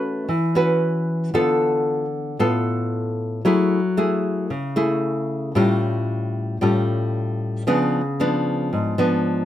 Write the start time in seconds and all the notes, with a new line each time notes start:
Already playing: A3 C#4 F#4 B4
0.29 E3
0.55 C#4 F#4 B4
1.34 D3 B3 F4 A4
2.39 A2 B3 F4 A4
3.45 F#3 A3 E4 G#4
3.97 A3 E4 G#4
4.50 C#3
4.76 A3 E4 G#4
5.55 A2 G3 C#4 F4
6.61 A2 G3 C#4 F4
7.67 C#3 F3 B3 D4
8.20 F3 B3 D4
8.73 G#2
8.98 F3 B3 D4